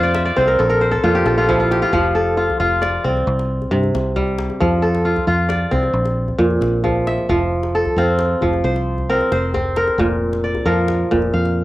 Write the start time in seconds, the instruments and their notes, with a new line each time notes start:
Already playing: fingered electric bass F2, kora F3 F4 C5 F5
0.03 kora D5
0.15 kora E5, djembe slap
0.25 kora D5
0.36 fingered electric bass C2, kora C4 C5, djembe bass
0.47 kora A#4, djembe tone
0.59 fingered electric bass A#1, kora A4
0.70 kora A#4, djembe slap
0.81 kora C5
0.92 kora A4, djembe slap, djembe bass
1.04 fingered electric bass F2, kora A#2 F4
1.15 kora G4, djembe slap, djembe tone
1.26 fingered electric bass A#1, kora A4, djembe slap
1.38 kora F4
1.49 kora F3 E4, djembe slap, djembe bass
1.60 kora F4, djembe slap
1.71 kora G4, djembe slap
1.82 kora F4, djembe tone
1.93 fingered electric bass F1, kora F3, djembe slap, djembe bass
2.15 kora A4
2.37 kora F4
2.50 djembe slap, djembe tone, djembe bass
2.60 fingered electric bass F1, kora F4
2.82 kora D5, djembe slap
3.04 fingered electric bass C2, kora C4, djembe bass
3.17 djembe tone
3.27 fingered electric bass C2
3.39 djembe slap
3.51 djembe slap
3.62 djembe slap, djembe bass
3.71 fingered electric bass G2, kora C3
3.83 djembe slap, djembe tone
3.95 fingered electric bass C2, djembe slap
4.16 kora G3, djembe slap, djembe bass
4.28 djembe slap
4.38 djembe slap
4.50 djembe tone
4.60 fingered electric bass F2, kora F3, djembe bass
4.72 djembe slap
4.82 kora A4
4.95 djembe slap
5.05 kora F4, djembe slap
5.16 djembe tone, djembe bass
5.27 fingered electric bass F2, kora F4
5.39 djembe slap
5.49 kora D5, djembe slap
5.71 fingered electric bass C2, kora C4, djembe slap, djembe bass
5.83 djembe tone
5.93 fingered electric bass A#1
6.05 djembe slap
6.28 djembe slap, djembe bass
6.38 fingered electric bass F2, kora A#2
6.50 djembe slap, djembe tone
6.61 fingered electric bass A#1, djembe slap
6.84 kora F3, djembe bass
6.96 djembe slap
7.07 kora E5, djembe slap
7.18 djembe tone
7.29 fingered electric bass F1, kora F3, djembe slap, djembe bass
7.63 djembe slap
7.75 kora A4
7.85 djembe slap, djembe tone, djembe bass
7.96 fingered electric bass F2, kora C4 F4
8.08 djembe slap
8.19 djembe slap
8.41 fingered electric bass F1, kora F3, djembe bass
8.53 djembe tone
8.64 fingered electric bass C2, kora C5
8.76 djembe slap
8.98 djembe slap, djembe bass
9.10 kora C4 A#4
9.21 djembe slap, djembe tone
9.32 fingered electric bass F1, kora C5, djembe slap
9.54 kora C4, djembe bass
9.76 kora A#4, djembe slap
9.88 djembe tone
9.98 fingered electric bass F1, kora A#2, djembe slap, djembe bass
10.33 djembe slap
10.44 kora D5
10.55 djembe slap, djembe tone, djembe bass
10.65 fingered electric bass F2, kora F3 A#4
10.77 djembe slap
10.88 djembe slap
11.11 fingered electric bass F1, kora A#2, djembe bass
11.22 djembe tone
11.34 fingered electric bass F2, kora F5
11.45 djembe slap